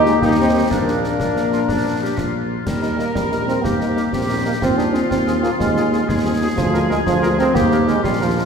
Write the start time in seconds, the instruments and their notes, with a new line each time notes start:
Already playing: tuba D#2, french horn section G3 A#3 D#4, woodwind section G4, cornet G4
0.06 euphonium G#3, snare
0.21 tuba D#2, french horn section G3 A#3 D#4, euphonium A#3, woodwind section D#4, cornet G4, concert bass drum, snare
0.39 euphonium C4
0.70 tuba A#1, french horn section F3 A#3 D4, euphonium A#3, woodwind section D4, cornet A#4, concert bass drum, snare
0.88 snare
1.04 snare
1.20 tuba A#1, woodwind section D4, concert bass drum, snare
1.36 snare
1.52 woodwind section F4, snare
1.69 tuba A#1, woodwind section D4, concert bass drum, snare
2.02 woodwind section G4
2.17 tuba A#1, woodwind section F4, concert bass drum, snare
2.66 tuba D#2, euphonium G3, woodwind section A#4, concert bass drum, snare, crash
2.82 french horn section G3 A#3 D#4, cornet A#4, snare
2.98 french horn section G3 A#3 D#4, euphonium A#3, cornet A#4, snare
3.14 tuba A#1, euphonium G3, concert bass drum, snare
3.31 french horn section G3 A#3 D#4, cornet A#4, snare
3.47 french horn section G3 A#3 D#4, euphonium C4, cornet A#4, snare
3.63 tuba D#2, euphonium A#3, woodwind section G4, concert bass drum, snare
3.80 french horn section G3 A#3 D#4, cornet A#4, snare
3.95 french horn section G3 A#3 D#4, cornet A#4, snare
4.13 tuba A#1, euphonium C4, woodwind section G4, concert bass drum, snare
4.28 french horn section G3 A#3 D#4, cornet A#4
4.45 french horn section G3 A#3 D#4, euphonium A#3, cornet A#4
4.62 tuba D#2, euphonium C4, woodwind section F4, concert bass drum, snare
4.78 french horn section F3 C4 F4, euphonium D4, cornet G#4, snare
4.93 french horn section F3 C4 F4, euphonium C4, cornet G#4, snare
5.10 tuba D#2, euphonium C4, concert bass drum, snare
5.27 french horn section F3 C4 F4, cornet G#4, snare
5.43 french horn section F3 C4 F4, euphonium A#3, cornet G#4, snare
5.59 tuba D#2, euphonium G#3, concert bass drum, snare
5.76 french horn section F3 C4 F4, cornet G#4, snare
5.92 french horn section F3 C4 F4, cornet G#4, snare
6.08 tuba D#2, woodwind section G#4, concert bass drum, snare
6.25 french horn section F3 C4 F4, cornet G#4
6.42 french horn section F3 C4 F4, cornet G#4
6.56 tuba D2, euphonium F3, concert bass drum, snare, crash
6.73 french horn section G#3 A#3 F4, cornet A#4, snare
6.89 euphonium G#3, french horn section G#3 A#3 F4, cornet A#4, snare
7.06 tuba D2, euphonium F3, concert bass drum, snare
7.22 french horn section G#3 A#3 F4, cornet A#4, snare
7.39 french horn section G#3 A#3 F4, euphonium C4, cornet A#4, snare
7.55 tuba D#2, euphonium A#3, woodwind section G4, concert bass drum, snare
7.71 french horn section G3 A#3 D#4, cornet A#4, snare
7.87 french horn section G3 A#3 D#4, euphonium G#3, cornet A#4, snare
8.03 tuba A#1, euphonium G3, woodwind section F4, concert bass drum, snare
8.20 euphonium F3, french horn section F3 A#3 D4, cornet A#4
8.36 french horn section F3 A#3 D4, cornet A#4